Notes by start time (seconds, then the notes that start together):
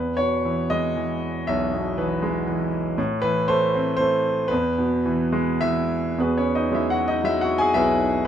Already playing: E2 B4
0.17 B2 C#5
0.45 E3
0.70 G#3 D#5
0.97 E3
1.47 B1 E5
1.73 B2
1.98 E3 B4
2.22 G#3
2.48 E3
2.98 A2
3.22 E3 B4
3.48 A3 C5
3.75 C4
3.97 A3 C5
4.48 E2 B4
4.78 B2
5.06 E3
5.33 G#3
5.61 E3 E5
6.18 E2 B3 F#4 G#4 B4
6.38 C#4 C#5
6.55 D#4 D#5
6.71 F#3 G#3 E4 E5
6.76 E4
6.90 F#4 F#5
7.08 D#4 D#5
7.24 F#3 G#3 E4 E5
7.41 F#4 F#5
7.58 G#4 G#5
7.74 B1 E4 G#4 B4 E5